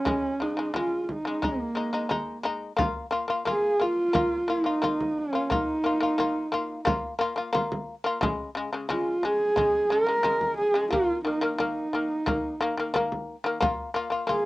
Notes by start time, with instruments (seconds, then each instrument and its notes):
Already playing: horsehead fiddle C#4
0.05 shamisen C#3 G#3, frame drum
0.40 shamisen C#3 G#3, horsehead fiddle D#4, frame drum
0.57 shamisen C#3 G#3
0.74 shamisen C#3 G#3, horsehead fiddle F4, frame drum
1.03 horsehead fiddle F4
1.09 horsehead fiddle D#4, frame drum
1.25 shamisen C#3 G#3
1.42 shamisen G#3 D#4, horsehead fiddle A#3, frame drum
1.75 shamisen G#3 D#4, frame drum
1.93 shamisen G#3 D#4
2.09 shamisen G#3 D#4, frame drum
2.44 shamisen G#3 D#4, frame drum
2.77 shamisen A#3 F4, frame drum
3.11 shamisen A#3 F4
3.28 shamisen A#3 F4, frame drum
3.45 shamisen A#3 F4, frame drum
3.50 horsehead fiddle G#4
3.80 shamisen A#3 F4, horsehead fiddle F4, frame drum
4.13 shamisen A#3 F4, frame drum
4.48 shamisen A#3 F4, horsehead fiddle D#4
4.64 shamisen A#3 F4, frame drum
4.82 shamisen A#3 F4, frame drum
5.00 frame drum
5.18 horsehead fiddle C#4
5.33 shamisen A#3 F4
5.50 shamisen A#3 F4, horsehead fiddle D#4, frame drum
5.84 shamisen A#3 F4
6.01 shamisen A#3 F4, frame drum
6.18 shamisen A#3 F4, frame drum
6.52 shamisen A#3 F4, frame drum
6.85 shamisen A#3 F4, frame drum
7.19 shamisen A#3 F4
7.36 shamisen A#3 F4, frame drum
7.53 shamisen A#3 F4, frame drum
7.72 frame drum
8.04 shamisen A#3 F4
8.21 shamisen C#3 G#3, frame drum
8.55 shamisen C#3 G#3
8.73 shamisen C#3 G#3
8.89 shamisen C#3 G#3, horsehead fiddle F4, frame drum
9.23 shamisen C#3 G#3, horsehead fiddle G#4, frame drum
9.56 shamisen C#3 G#3, frame drum
9.90 shamisen C#3 G#3, horsehead fiddle A#4
10.07 shamisen C#3 G#3, frame drum
10.23 shamisen C#3 G#3, frame drum
10.41 frame drum
10.57 horsehead fiddle G#4
10.74 shamisen C#3 G#3
10.91 shamisen D#3 A#3, horsehead fiddle F4, frame drum
11.24 shamisen D#3 A#3, horsehead fiddle D#4
11.41 shamisen D#3 A#3, frame drum
11.58 shamisen D#3 A#3, horsehead fiddle D#4, frame drum
11.93 shamisen D#3 A#3, frame drum
12.26 shamisen D#3 A#3, frame drum
12.60 shamisen D#3 A#3
12.77 shamisen D#3 A#3, frame drum
12.94 shamisen D#3 A#3, frame drum
13.12 frame drum
13.44 shamisen D#3 A#3
13.61 shamisen A#3 F4, frame drum
13.94 shamisen A#3 F4
14.10 shamisen A#3 F4, frame drum
14.27 shamisen A#3 F4, horsehead fiddle G#4, frame drum